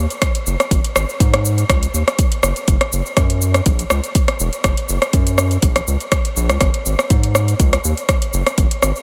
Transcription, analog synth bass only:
0, 0, Header, 1, 2, 480
1, 0, Start_track
1, 0, Tempo, 491803
1, 692, Time_signature, 4, 2, 24, 8
1, 8805, End_track
2, 0, Start_track
2, 0, Title_t, "Analog synth bass"
2, 0, Program_c, 0, 38
2, 457, Note_on_c, 0, 30, 99
2, 546, Note_off_c, 0, 30, 0
2, 696, Note_on_c, 0, 32, 106
2, 786, Note_off_c, 0, 32, 0
2, 934, Note_on_c, 0, 32, 90
2, 1025, Note_off_c, 0, 32, 0
2, 1174, Note_on_c, 0, 44, 99
2, 1602, Note_off_c, 0, 44, 0
2, 1655, Note_on_c, 0, 37, 92
2, 1829, Note_off_c, 0, 37, 0
2, 1892, Note_on_c, 0, 39, 83
2, 1984, Note_off_c, 0, 39, 0
2, 2372, Note_on_c, 0, 30, 100
2, 2464, Note_off_c, 0, 30, 0
2, 2615, Note_on_c, 0, 30, 106
2, 2705, Note_off_c, 0, 30, 0
2, 2856, Note_on_c, 0, 30, 91
2, 2946, Note_off_c, 0, 30, 0
2, 3095, Note_on_c, 0, 42, 100
2, 3522, Note_off_c, 0, 42, 0
2, 3573, Note_on_c, 0, 34, 93
2, 3748, Note_off_c, 0, 34, 0
2, 3817, Note_on_c, 0, 37, 84
2, 3906, Note_off_c, 0, 37, 0
2, 4297, Note_on_c, 0, 28, 103
2, 4386, Note_off_c, 0, 28, 0
2, 4532, Note_on_c, 0, 30, 106
2, 4624, Note_off_c, 0, 30, 0
2, 4776, Note_on_c, 0, 30, 89
2, 4866, Note_off_c, 0, 30, 0
2, 5013, Note_on_c, 0, 42, 103
2, 5441, Note_off_c, 0, 42, 0
2, 5491, Note_on_c, 0, 34, 93
2, 5667, Note_off_c, 0, 34, 0
2, 5735, Note_on_c, 0, 37, 85
2, 5825, Note_off_c, 0, 37, 0
2, 6214, Note_on_c, 0, 34, 103
2, 6344, Note_on_c, 0, 37, 89
2, 6358, Note_off_c, 0, 34, 0
2, 6421, Note_off_c, 0, 37, 0
2, 6453, Note_on_c, 0, 32, 106
2, 6544, Note_off_c, 0, 32, 0
2, 6695, Note_on_c, 0, 32, 93
2, 6785, Note_off_c, 0, 32, 0
2, 6933, Note_on_c, 0, 44, 97
2, 7361, Note_off_c, 0, 44, 0
2, 7416, Note_on_c, 0, 37, 93
2, 7590, Note_off_c, 0, 37, 0
2, 7659, Note_on_c, 0, 39, 83
2, 7747, Note_off_c, 0, 39, 0
2, 8138, Note_on_c, 0, 30, 99
2, 8226, Note_off_c, 0, 30, 0
2, 8374, Note_on_c, 0, 32, 105
2, 8465, Note_off_c, 0, 32, 0
2, 8619, Note_on_c, 0, 32, 89
2, 8707, Note_off_c, 0, 32, 0
2, 8805, End_track
0, 0, End_of_file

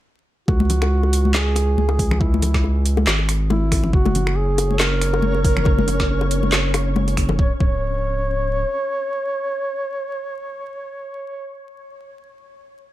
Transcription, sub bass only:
0, 0, Header, 1, 2, 480
1, 0, Start_track
1, 0, Tempo, 431655
1, 536, Time_signature, 4, 2, 24, 8
1, 14377, End_track
2, 0, Start_track
2, 0, Title_t, "Sub bass"
2, 0, Program_c, 0, 38
2, 536, Note_on_c, 0, 37, 103
2, 1959, Note_off_c, 0, 37, 0
2, 1975, Note_on_c, 0, 37, 101
2, 2678, Note_off_c, 0, 37, 0
2, 2695, Note_on_c, 0, 37, 96
2, 3398, Note_off_c, 0, 37, 0
2, 3413, Note_on_c, 0, 32, 102
2, 4357, Note_off_c, 0, 32, 0
2, 4374, Note_on_c, 0, 30, 103
2, 5798, Note_off_c, 0, 30, 0
2, 5815, Note_on_c, 0, 30, 103
2, 6518, Note_off_c, 0, 30, 0
2, 6537, Note_on_c, 0, 30, 97
2, 7239, Note_off_c, 0, 30, 0
2, 7258, Note_on_c, 0, 30, 104
2, 8200, Note_off_c, 0, 30, 0
2, 8215, Note_on_c, 0, 25, 98
2, 8359, Note_off_c, 0, 25, 0
2, 8456, Note_on_c, 0, 25, 96
2, 9611, Note_off_c, 0, 25, 0
2, 14377, End_track
0, 0, End_of_file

